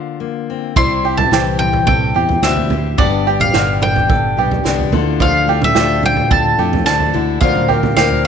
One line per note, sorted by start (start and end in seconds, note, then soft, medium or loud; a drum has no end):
0.00 0.77 D3 soft
0.00 0.19 A#3 soft
0.00 0.73 F4 soft
0.00 0.46 C5 soft
0.20 0.73 A#3 soft
0.50 0.74 C4 soft
0.76 1.28 C2 medium
0.76 1.04 C3 medium
0.76 1.32 C3 medium
0.76 1.05 G3 medium
0.76 1.05 C4 medium
0.76 1.04 E4 medium
0.76 2.98 E4 medium
0.76 1.03 E4 medium
0.76 1.02 G4 medium
0.76 1.16 C6 medium
0.76 kick medium
0.76 floor tom medium
1.04 1.31 C4 soft
1.04 1.32 E4 soft
1.04 1.32 G4 soft
1.04 1.32 G4 medium
1.17 1.57 A5 medium
1.17 floor tom medium
1.17 mid tom medium
1.31 1.84 C2 medium
1.31 2.95 E3 medium
1.31 2.15 G3 soft
1.31 2.16 C4 medium
1.31 2.15 E4 soft
1.31 1.87 G4 medium
1.31 2.13 G4 medium
1.31 snare medium
1.59 2.96 C4 soft
1.59 1.86 G5 medium
1.59 mid tom medium
1.73 floor tom medium
1.87 2.13 C2 medium
1.87 2.95 G2 medium
1.87 2.15 A4 medium
1.87 2.39 G5 medium
1.87 kick medium
1.87 floor tom medium
1.87 mid tom medium
2.14 2.41 E2 medium
2.14 2.43 C4 soft
2.14 2.43 E4 soft
2.14 2.43 G4 soft
2.14 2.70 G4 medium
2.29 floor tom medium
2.42 2.95 D2 medium
2.42 2.70 B2 medium
2.42 2.71 G3 medium
2.42 2.71 C4 medium
2.42 2.71 E4 medium
2.42 2.70 G4 medium
2.42 2.98 E5 medium
2.42 snare medium
2.57 floor tom medium
2.70 2.98 A2 soft
2.70 2.99 C4 soft
2.70 2.99 E4 soft
2.70 2.98 G4 soft
2.70 floor tom medium
2.98 3.50 G1 medium
2.98 4.07 G2 medium
2.98 3.26 G2 medium
2.98 3.26 D3 medium
2.98 3.27 G3 medium
2.98 3.27 B3 medium
2.98 3.26 D4 medium
2.98 3.27 D4 medium
2.98 4.89 G4 medium
2.98 3.25 G4 medium
2.98 3.41 D5 medium
2.98 kick loud
2.98 floor tom medium
3.27 3.53 G3 soft
3.27 3.54 B3 soft
3.27 3.55 D4 soft
3.27 3.54 G4 soft
3.27 3.53 G4 medium
3.40 3.79 F5 medium
3.40 floor tom medium
3.40 mid tom medium
3.53 4.06 G1 medium
3.53 4.63 D3 medium
3.53 4.38 G3 soft
3.53 4.38 B3 medium
3.53 4.38 D4 medium
3.53 4.09 G4 medium
3.53 4.36 G4 medium
3.53 snare medium
3.82 4.93 D4 soft
3.82 4.89 G5 medium
3.82 mid tom medium
3.96 floor tom medium
4.09 4.35 G1 medium
4.09 4.89 G2 medium
4.09 4.37 A4 medium
4.09 kick medium
4.09 floor tom medium
4.09 mid tom medium
4.37 4.63 B1 medium
4.37 4.64 G3 soft
4.37 4.65 B3 soft
4.37 4.66 D4 soft
4.37 4.65 G4 soft
4.37 4.92 G4 medium
4.51 floor tom medium
4.64 4.91 C2 medium
4.64 4.91 D3 medium
4.64 4.93 G3 medium
4.64 4.94 B3 medium
4.64 4.94 D4 medium
4.64 snare medium
4.68 4.92 G4 medium
4.79 floor tom medium
4.92 5.72 D2 medium
4.92 7.12 D3 medium
4.92 5.46 A3 medium
4.92 6.86 D4 medium
4.92 5.20 D4 soft
4.92 5.20 E4 soft
4.92 5.76 F4 soft
4.92 5.21 A4 soft
4.92 floor tom medium
5.20 5.48 D3 medium
5.20 5.48 F3 medium
5.20 5.49 D4 medium
5.20 5.49 E4 medium
5.20 5.48 F4 medium
5.20 5.48 A4 medium
5.20 5.64 F5 medium
5.20 kick loud
5.20 floor tom medium
5.48 6.57 A3 medium
5.48 5.77 E4 soft
5.48 5.74 G4 medium
5.48 5.77 A4 soft
5.52 5.77 D4 soft
5.62 6.05 E5 medium
5.62 floor tom medium
5.62 mid tom medium
5.75 6.27 D2 medium
5.75 6.59 F3 soft
5.75 6.60 D4 medium
5.75 7.12 F4 medium
5.75 6.30 G4 medium
5.75 snare medium
5.80 6.57 A4 medium
6.03 7.15 A2 soft
6.03 6.31 G5 medium
6.03 mid tom medium
6.17 floor tom medium
6.31 6.57 D2 medium
6.31 6.58 A4 medium
6.31 6.85 A5 medium
6.31 kick medium
6.31 floor tom medium
6.31 mid tom medium
6.58 6.84 F2 medium
6.58 7.11 A3 medium
6.58 6.87 D4 soft
6.58 6.87 E4 soft
6.58 7.13 G4 medium
6.58 6.87 A4 soft
6.73 floor tom medium
6.86 7.38 D2 medium
6.86 7.14 F3 medium
6.86 7.11 D4 medium
6.86 7.15 D4 medium
6.86 7.14 E4 medium
6.86 7.13 A4 medium
6.86 7.40 A5 medium
6.86 snare medium
7.00 floor tom medium
7.13 7.41 D3 medium
7.13 7.42 D4 soft
7.13 7.42 E4 soft
7.13 7.43 E4 soft
7.13 7.42 A4 medium
7.13 floor tom medium
7.41 7.93 D2 medium
7.41 8.27 D3 medium
7.41 7.70 D3 medium
7.41 7.70 F3 medium
7.41 7.70 C4 medium
7.41 7.70 D4 medium
7.41 7.69 F4 medium
7.41 8.24 F4 medium
7.41 7.68 A#4 medium
7.41 7.95 F5 medium
7.41 kick loud
7.41 floor tom medium
7.55 mid tom medium
7.68 7.96 C4 soft
7.68 7.97 D4 soft
7.68 7.96 G4 medium
7.68 7.97 A#4 soft
7.68 floor tom medium
7.83 floor tom medium
7.83 mid tom medium
7.97 8.27 D2 medium
7.97 8.27 F3 soft
7.97 8.27 A#3 medium
7.97 8.27 C4 medium
7.97 8.27 D4 medium
7.97 8.27 G4 medium
7.97 8.27 A#4 medium
7.97 8.24 F5 medium
7.97 snare medium
8.10 floor tom medium